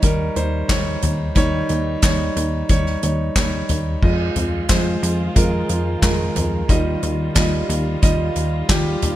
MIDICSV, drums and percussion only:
0, 0, Header, 1, 2, 480
1, 0, Start_track
1, 0, Tempo, 666741
1, 980, Time_signature, 4, 2, 24, 8
1, 6594, End_track
2, 0, Start_track
2, 0, Title_t, "Drums"
2, 17, Note_on_c, 9, 42, 96
2, 21, Note_on_c, 9, 36, 104
2, 89, Note_off_c, 9, 42, 0
2, 93, Note_off_c, 9, 36, 0
2, 260, Note_on_c, 9, 42, 54
2, 332, Note_off_c, 9, 42, 0
2, 497, Note_on_c, 9, 42, 83
2, 498, Note_on_c, 9, 36, 101
2, 500, Note_on_c, 9, 38, 96
2, 504, Note_on_c, 9, 39, 80
2, 569, Note_off_c, 9, 42, 0
2, 570, Note_off_c, 9, 36, 0
2, 572, Note_off_c, 9, 38, 0
2, 576, Note_off_c, 9, 39, 0
2, 737, Note_on_c, 9, 42, 69
2, 740, Note_on_c, 9, 43, 68
2, 809, Note_off_c, 9, 42, 0
2, 812, Note_off_c, 9, 43, 0
2, 975, Note_on_c, 9, 42, 83
2, 978, Note_on_c, 9, 36, 104
2, 1047, Note_off_c, 9, 42, 0
2, 1050, Note_off_c, 9, 36, 0
2, 1216, Note_on_c, 9, 42, 47
2, 1288, Note_off_c, 9, 42, 0
2, 1455, Note_on_c, 9, 42, 75
2, 1460, Note_on_c, 9, 36, 110
2, 1460, Note_on_c, 9, 38, 103
2, 1464, Note_on_c, 9, 39, 87
2, 1527, Note_off_c, 9, 42, 0
2, 1532, Note_off_c, 9, 36, 0
2, 1532, Note_off_c, 9, 38, 0
2, 1536, Note_off_c, 9, 39, 0
2, 1703, Note_on_c, 9, 42, 67
2, 1775, Note_off_c, 9, 42, 0
2, 1937, Note_on_c, 9, 42, 88
2, 1940, Note_on_c, 9, 36, 107
2, 2009, Note_off_c, 9, 42, 0
2, 2012, Note_off_c, 9, 36, 0
2, 2058, Note_on_c, 9, 38, 28
2, 2130, Note_off_c, 9, 38, 0
2, 2178, Note_on_c, 9, 42, 51
2, 2250, Note_off_c, 9, 42, 0
2, 2415, Note_on_c, 9, 42, 83
2, 2417, Note_on_c, 9, 36, 98
2, 2418, Note_on_c, 9, 38, 96
2, 2422, Note_on_c, 9, 39, 81
2, 2487, Note_off_c, 9, 42, 0
2, 2489, Note_off_c, 9, 36, 0
2, 2490, Note_off_c, 9, 38, 0
2, 2494, Note_off_c, 9, 39, 0
2, 2655, Note_on_c, 9, 42, 74
2, 2658, Note_on_c, 9, 43, 59
2, 2727, Note_off_c, 9, 42, 0
2, 2730, Note_off_c, 9, 43, 0
2, 2898, Note_on_c, 9, 36, 95
2, 2899, Note_on_c, 9, 49, 86
2, 2970, Note_off_c, 9, 36, 0
2, 2971, Note_off_c, 9, 49, 0
2, 3137, Note_on_c, 9, 42, 52
2, 3138, Note_on_c, 9, 43, 53
2, 3209, Note_off_c, 9, 42, 0
2, 3210, Note_off_c, 9, 43, 0
2, 3374, Note_on_c, 9, 42, 68
2, 3379, Note_on_c, 9, 36, 98
2, 3379, Note_on_c, 9, 38, 109
2, 3383, Note_on_c, 9, 39, 86
2, 3446, Note_off_c, 9, 42, 0
2, 3451, Note_off_c, 9, 36, 0
2, 3451, Note_off_c, 9, 38, 0
2, 3455, Note_off_c, 9, 39, 0
2, 3623, Note_on_c, 9, 42, 65
2, 3695, Note_off_c, 9, 42, 0
2, 3858, Note_on_c, 9, 42, 97
2, 3860, Note_on_c, 9, 36, 107
2, 3930, Note_off_c, 9, 42, 0
2, 3932, Note_off_c, 9, 36, 0
2, 4097, Note_on_c, 9, 42, 56
2, 4169, Note_off_c, 9, 42, 0
2, 4337, Note_on_c, 9, 36, 107
2, 4337, Note_on_c, 9, 42, 85
2, 4339, Note_on_c, 9, 38, 107
2, 4343, Note_on_c, 9, 39, 88
2, 4409, Note_off_c, 9, 36, 0
2, 4409, Note_off_c, 9, 42, 0
2, 4411, Note_off_c, 9, 38, 0
2, 4415, Note_off_c, 9, 39, 0
2, 4577, Note_on_c, 9, 42, 73
2, 4580, Note_on_c, 9, 43, 65
2, 4649, Note_off_c, 9, 42, 0
2, 4652, Note_off_c, 9, 43, 0
2, 4818, Note_on_c, 9, 36, 108
2, 4818, Note_on_c, 9, 42, 86
2, 4890, Note_off_c, 9, 36, 0
2, 4890, Note_off_c, 9, 42, 0
2, 5058, Note_on_c, 9, 42, 47
2, 5130, Note_off_c, 9, 42, 0
2, 5293, Note_on_c, 9, 42, 74
2, 5298, Note_on_c, 9, 36, 107
2, 5298, Note_on_c, 9, 38, 114
2, 5302, Note_on_c, 9, 39, 84
2, 5365, Note_off_c, 9, 42, 0
2, 5370, Note_off_c, 9, 36, 0
2, 5370, Note_off_c, 9, 38, 0
2, 5374, Note_off_c, 9, 39, 0
2, 5542, Note_on_c, 9, 42, 65
2, 5614, Note_off_c, 9, 42, 0
2, 5777, Note_on_c, 9, 42, 95
2, 5780, Note_on_c, 9, 36, 116
2, 5849, Note_off_c, 9, 42, 0
2, 5852, Note_off_c, 9, 36, 0
2, 6016, Note_on_c, 9, 42, 53
2, 6088, Note_off_c, 9, 42, 0
2, 6255, Note_on_c, 9, 42, 90
2, 6256, Note_on_c, 9, 36, 97
2, 6257, Note_on_c, 9, 38, 97
2, 6261, Note_on_c, 9, 39, 83
2, 6327, Note_off_c, 9, 42, 0
2, 6328, Note_off_c, 9, 36, 0
2, 6329, Note_off_c, 9, 38, 0
2, 6333, Note_off_c, 9, 39, 0
2, 6495, Note_on_c, 9, 42, 80
2, 6498, Note_on_c, 9, 43, 71
2, 6567, Note_off_c, 9, 42, 0
2, 6570, Note_off_c, 9, 43, 0
2, 6594, End_track
0, 0, End_of_file